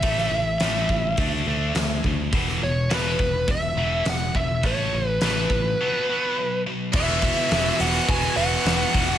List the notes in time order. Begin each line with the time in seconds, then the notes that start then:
Already playing: E5
0.03 A1 A2 E3 A3, kick, open hi-hat
0.18 snare
0.31 A1 A2 E3
0.60 A1 A2 E3 A3, snare, open hi-hat
0.89 A1 A2 E3, kick
1.17 D2 D3 A3 D4, kick, open hi-hat
1.46 D2 D3 A3 D4
1.75 D2 D3 A3, snare, open hi-hat
2.04 D2 D3 A3, kick
2.33 E1 E2 B2 E3, kick, open hi-hat
2.48 snare
2.61 E1 E2 B2 C#5
2.90 E1 E2 B2 E3, snare, open hi-hat
2.94 B4
3.19 E1 E2 B2, kick
3.48 E1 E2 B2 E5, kick, open hi-hat
3.75 E1 E2 B2 E3
4.05 E1 E2 B2, snare, open hi-hat
4.09 F#5
4.35 E1 E2 B2 E5, kick
4.63 A1 A2 E3 A3 C#5, kick, open hi-hat
4.93 A1 A2 E3
5.07 B4
5.21 A1 A2 E3 A3 B4, snare, open hi-hat
5.49 A1 A2 E3, kick
5.81 B2 F#3 B3
6.09 B2 F#3 B3
6.39 B2 F#3
6.67 B2 F#3
6.93 E1 E2 B2 E3 B3 F#4 E5, kick, crash
7.22 E2 B2 E3, kick, open hi-hat
7.51 E1 B2 E3, snare, open hi-hat
7.80 E1 E2 B2 E3 F#5, open hi-hat
8.09 E1 E2 B2 E3 G#5, kick, open hi-hat
8.37 E1 E2 B2 E3 F#5, open hi-hat
8.65 E1 E2 B2 E3, snare, open hi-hat
8.93 E1 E2 B2 E3, kick, open hi-hat